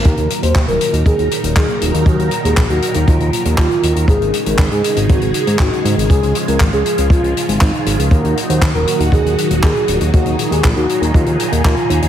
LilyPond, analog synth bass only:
\new Staff \with { instrumentName = "Analog synth bass" } { \clef bass \time 4/4 \key ees \minor \tempo 4 = 119 ees,16 ees,16 r16 ees,16 ees,16 ees,,16 r16 ees,16 ees,16 ees,16 r16 ees,,16 ees,16 r16 ees,,16 ees,16 | ees,16 ees,16 r16 ees,16 bes,,16 ees,16 r16 ees,16 ees,16 ees,16 r16 ees,16 ees,16 r16 ees,16 ees,16 | aes,,16 aes,,16 r16 aes,,16 aes,,16 aes,16 r16 aes,,16 aes,,16 aes,,16 r16 aes,16 aes,,16 r16 aes,16 aes,,16 | des,16 des,16 r16 des,16 aes,,16 des,16 r16 des,16 des,16 des,16 r16 aes,,16 aes,,16 r16 aes,,16 des,16 |
ees,16 ees,16 r16 ees,16 ees,16 ees,,16 r16 ees,16 ees,16 ees,16 r16 ees,,16 ees,16 r16 ees,,16 ees,16 | ees,16 ees,16 r16 ees,16 bes,,16 ees,16 r16 ees,16 ees,16 ees,16 r16 ees,16 ees,16 r16 ees,16 ees,16 | }